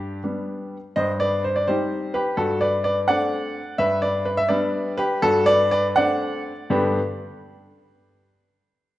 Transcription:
grand piano
Already playing: G2 D4 G4
0.24 G3 B3 D4
0.96 G2 C5 D#5
1.20 B4 D5
1.44 C5
1.56 D5
1.67 G3 C4 D#4 G4 C5
2.14 G4 B4
2.37 G2 F#4 A4
2.61 B4 D5
2.84 B4 D5
3.08 A3 C4 D4 D5 F#5
3.78 G2 B4 E5
4.02 B4 D5
4.25 B4
4.37 E5
4.49 G3 B3 D4 B4 D5
4.98 G4 B4
5.22 G2 F#4 A4
5.46 B4 D5
5.71 B4 D5
5.96 A3 C4 D4 D5 F#5
6.70 G2 D3 B3 D4 G4 B4 B5

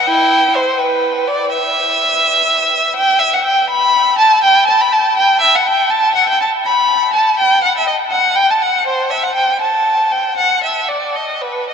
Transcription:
violin
0.07 E4 G5
0.56 C5
0.79 B4
1.28 D5
1.50 E5
2.96 G5
3.19 E5
3.33 F#5
3.45 G5
3.70 B5
4.18 A5
4.44 G5
4.67 A5
4.81 B5
4.92 A5
5.17 G5
5.41 E5
5.55 F#5
5.67 G5
5.90 A5
6.15 F#5
6.29 G5
6.41 A5
6.66 B5
7.13 A5
7.39 G5
7.64 F#5
7.77 E5
7.87 D#5
8.11 F#5
8.36 G5
8.51 A5
8.62 F#5
8.87 C5
9.10 E5
9.23 F#5
9.35 G5
9.62 A5
10.12 G5
10.37 F#5
10.64 E5
10.89 D5
11.16 D#5
11.42 B4
11.69 D#5

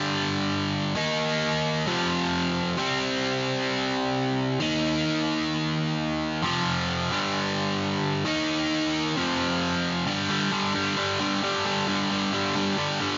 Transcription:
overdriven electric guitar
Already playing: G2 D3 G3
0.95 D#3 A#3 D#4
1.87 F2 C3 F3
2.77 C3 G3 C4
4.60 D#3 A#3 D#4
6.42 F2 C3 F3
7.11 G2 D3 G3
8.25 D#3 A#3 D#4
9.16 F2 C3 F3
10.07 G2 D3 G3
10.29 G2 D3 G3
10.52 G2 D3 G3
10.74 G2 D3 G3
10.97 G2 D3 G3
11.20 G2 D3 G3
11.42 G2 D3 G3
11.66 G2 D3 G3
11.88 G2 D3 G3
12.11 G2 D3 G3
12.33 G2 D3 G3
12.55 G2 D3 G3
12.78 G2 D3 G3
13.01 G2 D3 G3

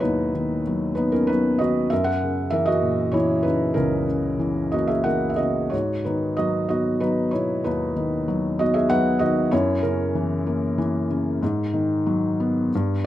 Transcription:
felt piano
Already playing: G#2 B2 D#3 F#3 B3 D#4 E4 F#4 C#5 D#5
0.00 D#2 D#4 B4
0.35 D#3
0.67 F#3
0.95 B3 D#4 B4
1.12 C#4 A#4
1.27 F#3 D#4 B4
1.59 D#3 F#4 D#5
1.90 F#2 A#4 E5
2.04 A#4 F#5
2.23 C#3
2.50 E3 A#4 E5
2.66 F#4 D#5
2.82 A#2
3.12 E3 E4 C#5
3.43 C#3 D#4 B4
3.74 C#2 C#4 A#4
4.08 C#3
4.39 E3
4.72 A#3 F#4 D#5
4.87 G#4 E5
5.04 E3 A#4 F#5
5.30 E5
5.36 F#4 D#5
5.40 C#3
5.70 G#2 F#4 C#5
6.04 D#3 D#4 B4
6.37 F#3 F#4 D#5
6.69 B3 F#4 D#5
7.00 F#3 D#4 B4
7.31 B2 E4 C#5
7.64 D#2 D#4 B4
7.96 D#3
8.28 F#3
8.59 B3 F#4 D#5
8.74 G#4 E5
8.89 F#3 B4 F#5
9.19 D#3 F#4 D#5
9.51 F#2 E4 C#5
9.83 C#3 C#4 A#4
10.15 E3
10.47 A#3
10.78 E3
11.11 C#3
11.42 G#2
11.74 D#3
12.07 F#3
12.40 B3
12.75 G2

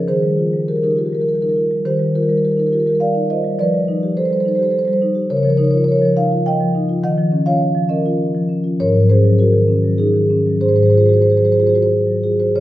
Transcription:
marimba
0.08 D#3 G#4 C5
0.23 G3
0.38 F4
0.53 G3
0.68 G4 A#4
0.76 G4 A#4
0.83 D#4 G4 A#4
0.90 G4 A#4
0.97 F4 G4 A#4
1.05 G4 A#4
1.13 G3 G4 A#4
1.20 G4 A#4
1.27 G4 A#4
1.34 G4 A#4
1.41 D#4 G4 A#4
1.48 G4 A#4
1.57 F4
1.71 G3
1.85 D#3 G4 C5
1.99 G3
2.15 F4 G4 A#4
2.23 G4 A#4
2.29 G3 G4 A#4
2.37 G4 A#4
2.44 G4 A#4
2.52 G4 A#4
2.57 D#4 G4 A#4
2.66 G4 A#4
2.72 F4 G4 A#4
2.80 G4 A#4
2.86 G3 G4 A#4
2.95 A#4
3.00 D5 F5
3.15 D#4
3.30 F4 C5 D#5
3.44 G3
3.59 F3 B4 D5
3.74 G3
3.88 D#4
4.03 G4
4.17 A4 C5
4.25 A4 C5
4.31 G3 A4 C5
4.40 A4 C5
4.45 D#4 A4 C5
4.55 G4 A4 C5
4.63 A4 C5
4.71 A4 C5
4.79 A4 C5
4.85 G3 A4 C5
4.93 C5
5.02 D#4
5.15 G4
5.30 C#3 A#4 C#5
5.37 A#4 C#5
5.43 F3 A#4 C#5
5.50 A#4 C#5
5.57 D#4 A#4 C#5
5.64 A#4 C#5
5.71 F4 A#4 C#5
5.78 A#4 C#5
5.84 C#5
5.89 A#4 C#5
5.96 A#4 C#5
6.02 F3 A#4 C#5
6.16 D#4 C#5 F5
6.32 F4
6.46 D#5 G5
6.61 F3
6.75 D#4
6.89 F4
7.03 D#3 D#5 F#5
7.18 F3
7.32 C#4
7.46 F4 C#5 F5
7.75 F3
7.89 C#4 A#4 D#5
8.06 F4
8.34 F3
8.49 C#4
8.64 F4
8.80 G#2 A#4 C#5
8.95 F#3
9.09 C#4 G#4 C5
9.24 F#3
9.39 F#4 A#4
9.53 D#3
9.68 C#4
9.84 F#3
9.98 D#4 G#4
10.14 D#3
10.30 C#4
10.46 F#3
10.61 G#2 G#4 C5
10.69 G#4 C5
10.76 F#3 G#4 C5
10.83 G#4 C5
10.90 G#4 C5
10.95 F4 C5
11.00 G#4
11.06 F#4 G#4 C5
11.14 G#4 C5
11.22 G#4 C5
11.30 G#4 C5
11.37 G#4 C5
11.43 F#3 G#4 C5
11.52 G#4 C5
11.58 F4 G#4 C5
11.67 G#4 C5
11.74 F#4 G#4 C5
11.82 C5
12.07 F#3
12.24 F4 G#4
12.40 F#4 C5
12.56 C#3 C#5

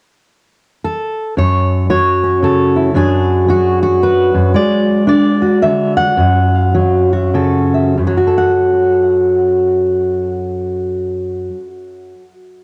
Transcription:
steel-string acoustic guitar
0.84 A4
1.37 F#2 C#5
1.90 F#3 C#5
2.24 C#4
2.42 C#3 A4
2.76 E4
2.94 F#2 F#3 D4 F#4 G#4
3.49 F#3 F#4
3.83 F#4
4.03 B4
4.34 F#2
4.54 G#3 D5
5.07 D4 D5
5.42 F#4
5.62 D3 E5
5.97 F#5
6.17 F#2
6.74 F#3
7.13 F#4
7.34 C#3 A4
7.74 E5
7.97 F#2
8.07 F#3
8.17 F#4
8.27 A4
8.38 F#5

